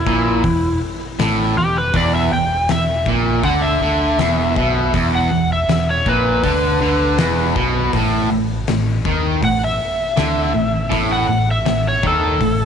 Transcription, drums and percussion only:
0.07 kick
0.44 kick, open hi-hat
1.19 snare, open hi-hat
1.94 kick, open hi-hat
2.69 snare, open hi-hat
3.06 kick
3.43 kick, open hi-hat
4.19 snare, open hi-hat
4.56 kick
4.94 kick, open hi-hat
5.69 snare, open hi-hat
6.06 kick
6.44 kick, open hi-hat
7.18 snare, open hi-hat
7.56 kick
7.93 kick, open hi-hat
8.67 snare, open hi-hat
9.05 kick
9.42 kick, open hi-hat
10.17 snare, open hi-hat
10.92 kick, open hi-hat
11.66 snare, open hi-hat
12.03 kick
12.41 kick, open hi-hat

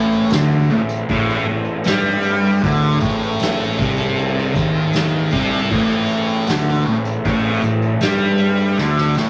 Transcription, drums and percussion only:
0.12 tambourine
0.30 snare, ride, tambourine
0.51 tambourine
0.72 ride
0.89 tambourine
1.09 kick, ride, tambourine
1.29 snare
1.48 ride
1.65 tambourine
1.84 snare, ride, tambourine
2.23 ride, tambourine
2.43 tambourine
2.64 kick, ride
3.00 kick, ride, tambourine
3.20 tambourine
3.40 snare, ride, tambourine
3.59 tambourine
3.79 kick, ride
3.97 tambourine
4.16 ride, tambourine
4.38 snare
4.55 kick, ride, tambourine
4.75 tambourine
4.93 snare, ride, tambourine
5.31 kick, ride, tambourine
5.51 tambourine
5.71 kick, crash
6.09 ride, tambourine
6.28 tambourine
6.47 snare, ride, tambourine
6.67 tambourine
6.87 ride
7.05 tambourine
7.25 kick, ride, tambourine
7.62 ride, tambourine
7.82 tambourine
8.01 snare, ride, tambourine
8.38 ride, tambourine
8.58 tambourine
8.76 snare, tambourine
8.96 snare, tambourine
9.15 snare, tambourine

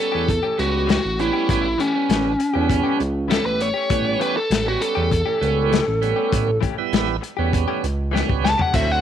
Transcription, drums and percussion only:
0.29 kick, closed hi-hat
0.59 closed hi-hat
0.89 snare, closed hi-hat
1.19 closed hi-hat
1.49 kick, closed hi-hat
1.80 closed hi-hat
2.10 snare, closed hi-hat
2.40 closed hi-hat
2.70 kick, closed hi-hat
3.00 closed hi-hat
3.30 snare, closed hi-hat
3.60 closed hi-hat
3.90 kick, closed hi-hat
4.21 closed hi-hat
4.51 snare, closed hi-hat
4.82 closed hi-hat
5.12 kick, closed hi-hat
5.43 closed hi-hat
5.72 snare, closed hi-hat
6.03 closed hi-hat
6.33 kick, closed hi-hat
6.63 kick, closed hi-hat
6.93 snare, closed hi-hat
7.23 closed hi-hat
7.53 kick, closed hi-hat
7.84 closed hi-hat
8.16 snare
8.29 kick
8.45 snare
8.59 floor tom
8.74 kick, closed hi-hat, crash

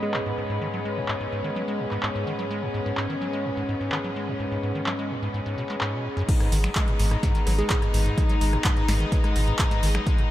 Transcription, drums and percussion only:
0.14 clap
1.08 clap
1.91 clap
2.03 clap
2.97 clap
3.92 clap
4.86 clap
5.69 clap
5.81 clap
6.29 kick, closed hi-hat, crash
6.40 cross-stick, closed hi-hat
6.52 open hi-hat
6.64 finger snap, closed hi-hat
6.75 kick, cross-stick, clap, closed hi-hat
6.88 closed hi-hat
6.99 open hi-hat
7.11 cross-stick, closed hi-hat
7.23 kick, snare, closed hi-hat
7.35 closed hi-hat
7.47 cross-stick, open hi-hat
7.59 closed hi-hat
7.70 kick, clap, closed hi-hat
7.82 cross-stick, closed hi-hat
7.94 open hi-hat
8.06 closed hi-hat
8.18 kick, cross-stick, closed hi-hat
8.29 closed hi-hat
8.41 open hi-hat
8.53 cross-stick, closed hi-hat
8.64 kick, clap, closed hi-hat
8.77 closed hi-hat
8.88 cross-stick, snare, open hi-hat
9.00 closed hi-hat
9.12 kick, closed hi-hat
9.24 cross-stick, closed hi-hat
9.36 open hi-hat
9.59 kick, cross-stick, clap, closed hi-hat
9.71 snare, closed hi-hat
9.83 open hi-hat
9.95 finger snap, cross-stick, closed hi-hat
10.07 kick, closed hi-hat
10.18 closed hi-hat

